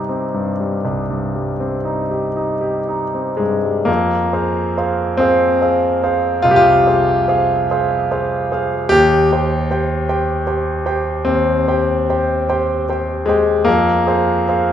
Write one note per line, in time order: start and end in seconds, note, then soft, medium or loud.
0.00 0.82 C2 medium
0.00 0.60 G3 soft
0.00 0.09 C4 soft
0.00 1.85 D#4 soft
0.00 2.11 G4 soft
0.00 3.40 C6 medium
0.09 0.50 C4 soft
0.34 0.75 G2 soft
0.60 1.00 G3 soft
0.85 3.83 C2 soft
1.10 1.50 G2 soft
1.36 1.76 G3 soft
1.60 2.01 C4 soft
1.85 2.26 D#4 soft
2.11 2.52 G4 soft
2.36 2.78 D#4 soft
2.61 3.03 G4 soft
2.88 3.30 D#4 soft
3.14 3.55 C4 soft
3.37 3.79 G2 soft
3.37 3.86 G#3 medium
3.65 3.88 G3 soft
3.85 4.31 F2 medium
3.85 5.19 A#3 medium
4.33 4.73 G#4 soft
4.33 4.73 C5 soft
4.33 4.74 F5 medium
4.77 5.17 G#4 soft
4.77 5.17 C5 soft
4.77 5.17 F5 medium
5.17 6.44 C4 medium
5.17 5.58 G#4 soft
5.17 5.59 C5 soft
5.17 5.59 F5 medium
5.62 6.00 G#4 soft
5.62 6.00 C5 soft
5.62 6.00 F5 medium
6.03 6.41 G#4 soft
6.03 6.41 C5 soft
6.03 6.41 F5 medium
6.42 6.85 C2 medium
6.42 6.51 F4 loud
6.51 6.58 G4 medium
6.56 8.91 F4 loud
6.87 7.25 G#4 soft
6.87 7.25 C5 soft
6.87 7.25 F5 medium
7.28 7.66 G#4 medium
7.28 7.66 C5 soft
7.28 7.67 F5 medium
7.71 8.08 G#4 medium
7.71 8.08 C5 soft
7.71 8.09 F5 medium
8.11 8.48 G#4 soft
8.11 8.48 C5 medium
8.11 8.48 F5 medium
8.52 8.88 G#4 soft
8.52 8.88 C5 soft
8.52 8.89 F5 medium
8.89 9.30 D#2 medium
8.89 9.30 G4 loud
9.32 9.67 G4 medium
9.32 9.67 C5 medium
9.32 9.67 G5 medium
9.71 10.05 G4 medium
9.71 10.05 C5 medium
9.71 10.05 G5 medium
10.08 10.43 G4 medium
10.08 10.43 C5 medium
10.08 10.43 G5 medium
10.47 10.82 G4 medium
10.47 10.82 C5 soft
10.47 10.83 G5 medium
10.86 11.23 G4 medium
10.86 11.23 C5 medium
10.86 11.23 G5 medium
11.25 11.67 D#2 medium
11.25 12.87 C4 medium
11.68 12.05 G4 medium
11.68 12.05 C5 soft
11.68 12.05 G5 medium
12.09 12.45 G4 soft
12.09 12.46 C5 medium
12.09 12.46 G5 medium
12.49 12.85 G4 medium
12.49 12.85 C5 medium
12.49 12.85 G5 medium
12.89 13.24 G4 soft
12.89 13.24 C5 soft
12.89 13.25 G5 medium
13.26 13.66 G#3 medium
13.26 13.63 G4 medium
13.26 13.64 C5 soft
13.26 13.64 G5 medium
13.65 14.06 F2 medium
13.65 14.72 A#3 medium
14.07 14.44 G#4 medium
14.07 14.44 C5 medium
14.07 14.44 F5 medium
14.48 14.72 G#4 soft
14.48 14.72 C5 medium
14.48 14.72 F5 medium